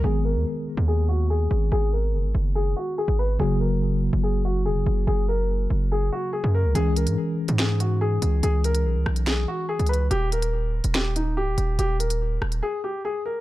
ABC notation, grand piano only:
X:1
M:4/4
L:1/8
Q:1/4=143
K:G#m
V:1 name="Grand piano"
G A3 G F G2 | G A3 G F G B | G A3 G F G2 | G A3 G F G A |
G A3 G F G2 | G A3 G F G B | =G A3 G D G2 | =G A3 ^G =G ^G A |]